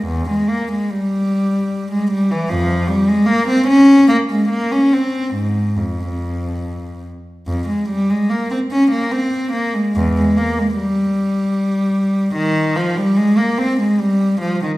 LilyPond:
\new Staff \with { instrumentName = "Cello" } { \clef bass \time 3/4 \key f \minor \tempo 4 = 73 e,16 aes16 bes16 aes16 g4~ g16 aes16 g16 e16 | <f, f>8 g16 aes16 bes16 c'16 des'8 bes16 aes16 bes16 des'16 | c'8 aes,8 f,4. r8 | f,16 aes16 g16 aes16 bes16 c'16 des'16 bes16 c'8 bes16 aes16 |
e,16 aes16 bes16 aes16 g2 | ees8 f16 g16 aes16 bes16 c'16 aes16 g8 f16 ees16 | }